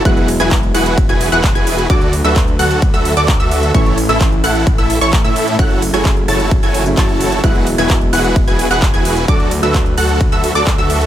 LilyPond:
<<
  \new Staff \with { instrumentName = "Synth pluck" } { \time 4/4 \key e \mixolydian \tempo 4 = 130 fis'''8 r16 gis'''16 r8 fis'''8 r16 gis'''8 fis'''16 r16 gis'''8. | d'''8 r16 e'''16 r8 fis'''8 r16 e'''8 d'''16 r16 e'''8. | cis'''8 r16 e'''16 r8 fis'''8 r16 e'''8 cis'''16 r16 e'''8. | fis'''8 r16 gis'''16 r8 a'''8 r16 gis'''8 r16 a'''4 |
fis'''8 r16 gis'''16 r8 fis'''8 r16 gis'''8 fis'''16 r16 gis'''8. | d'''8 r16 e'''16 r8 fis'''8 r16 e'''8 d'''16 r16 e'''8. | }
  \new Staff \with { instrumentName = "Supersaw synth" } { \time 4/4 \key e \mixolydian <e' fis' gis' b' fis''>8 r16 <e' fis' gis' b' gis''>16 r8 <e' fis' gis' b' fis''>8 r16 <e' fis' gis' b' gis''>8 <e' fis' gis' b' fis''>16 r16 <e' fis' gis' b' gis''>8. | <fis' a' d''>8 r16 <fis' a' e''>16 r8 <fis' a' fis''>8 r16 <fis' a' e''>8 <fis' a' d''>16 r16 <fis' a' e''>8. | <e' a' cis''>8 r16 <e' a' e''>16 r8 <e' a' fis''>8 r16 <e' a' e''>8 <e' a' cis''>16 r16 <e' a' e''>8. | <e' fis' a' cis'' fis''>8 r16 <e' fis' a' cis'' gis''>16 r8 <e' fis' a' cis'' a''>8 r16 <e' fis' a' cis'' gis''>8 r16 <e' fis' a' cis'' a''>4 |
<e' fis' b' fis''>8 r16 <e' fis' gis' b' gis''>16 r8 <e' fis' gis' b' fis''>8 r16 <e' fis' gis' b' gis''>8 <e' fis' gis' b' fis''>16 r16 <e' fis' gis' b' gis''>8. | <fis' a' d''>8 r16 <fis' a' e''>16 r8 <fis' a' fis''>8 r16 <fis' a' e''>8 <fis' a' d''>16 r16 <fis' a' e''>8. | }
  \new Staff \with { instrumentName = "Grand piano" } { \time 4/4 \key e \mixolydian <fis gis b e'>8. <fis gis b e'>8 r2 r8. | <fis a d' fis'>8. <fis a d' b'>2.~ <fis a d' b'>16 | <a, e a cis' e'>8. <a, e a cis' e'>8 r2 r8. | <fis a cis' e'>8. <fis a cis' gis'>2 <fis a cis' e'>4~ <fis a cis' e'>16 |
<fis gis b e'>8. <fis gis b e'>8 r2 r8. | <fis a d' fis'>8. <fis a d' b'>2.~ <fis a d' b'>16 | }
  \new Staff \with { instrumentName = "Detuned saw bass" } { \clef bass \time 4/4 \key e \mixolydian e,,8. e,,8. e,,8. e,,8 e,,8 e,,8. | d,8. d,8. d,8. d,8 d,8 d,8. | a,,8. a,,8. a,,8. a,,8 a,,8 a,8. | fis,,8. fis,,8. fis,,8. fis,,8. fis,,4 |
e,,8. e,,8. e,,8. e,,8 e,,8 e,,8. | d,8. d,8. d,8. d,8 d,8 d,8. | }
  \new DrumStaff \with { instrumentName = "Drums" } \drummode { \time 4/4 <hh bd>16 hh16 <hho cymr>16 hh16 <hc hh bd>16 hh16 <hho cymr>16 hh16 <hh bd>16 hh16 <hho cymr>16 hh16 <hc hh bd>16 hh16 <hho cymr>16 hh16 | <hh bd>16 hh16 <hho cymr>16 hh16 <hc hh bd>16 hh16 <hho cymr>16 hh16 <hh bd>16 hh16 <hho cymr>16 hh16 <hc hh bd>16 hh16 <hho cymr>16 hh16 | <hh bd>16 hh16 <hho cymr>16 hh16 <hc hh bd>16 hh16 <hho cymr>16 hh16 <hh bd>16 hh16 <hho cymr>16 hh16 <hc hh bd>16 hh16 <hho cymr>16 hh16 | <hh bd>16 hh16 <hho cymr>16 hh16 <hc hh bd>16 hh16 <hho cymr>16 hh16 <hh bd>16 hh16 <hho cymr>16 hh16 <hc hh bd>16 hh16 <hho cymr>16 hh16 |
<hh bd>16 hh16 <hho cymr>16 hh16 <hc hh bd>16 hh16 <hho cymr>16 hh16 <hh bd>16 hh16 <hho cymr>16 hh16 <hc hh bd>16 hh16 <hho cymr>16 hh16 | <hh bd>16 hh16 <hho cymr>16 hh16 <hc hh bd>16 hh16 <hho cymr>16 hh16 <hh bd>16 hh16 <hho cymr>16 hh16 <hc hh bd>16 hh16 <hho cymr>16 hh16 | }
>>